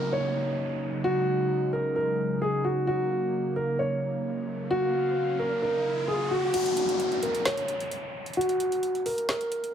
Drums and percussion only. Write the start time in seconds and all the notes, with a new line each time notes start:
6.54 closed hi-hat, crash
6.66 closed hi-hat
6.77 closed hi-hat
6.89 closed hi-hat
7.00 closed hi-hat
7.12 closed hi-hat
7.23 closed hi-hat
7.35 closed hi-hat
7.45 snare, closed hi-hat
7.57 closed hi-hat
7.68 closed hi-hat
7.80 closed hi-hat
7.91 closed hi-hat
8.26 closed hi-hat
8.33 closed hi-hat
8.41 closed hi-hat
8.49 closed hi-hat
8.60 closed hi-hat
8.72 closed hi-hat
8.83 closed hi-hat
8.95 closed hi-hat
9.06 open hi-hat
9.18 closed hi-hat
9.29 snare, closed hi-hat
9.41 closed hi-hat
9.52 closed hi-hat
9.64 closed hi-hat